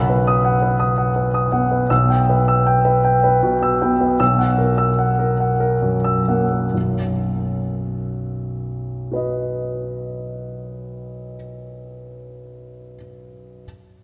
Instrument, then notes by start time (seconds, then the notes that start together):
grand piano
Already playing: B1 F#5 B5
0.10 B4
0.27 D#6
0.45 F#5
0.62 B4
0.80 D#6
0.98 F#5
1.16 B4
1.34 D#6
1.52 B3 F#5
1.71 B4
1.90 B1 E6
2.10 G5
2.30 B4
2.48 E6
2.67 G5
2.85 B4
3.05 G5
3.24 B4
3.43 B2
3.63 E6
3.82 B3 G5
4.01 B4
4.20 B1 E6
4.39 F#5
4.58 A#4
4.78 E6
4.99 F#5
5.19 A#4
5.40 F#5
5.60 A#4
5.82 F#2
6.04 E6
6.28 A#3 F#5
6.53 A#4
6.74 B1 F#2
9.12 F#4 B4
9.16 D#5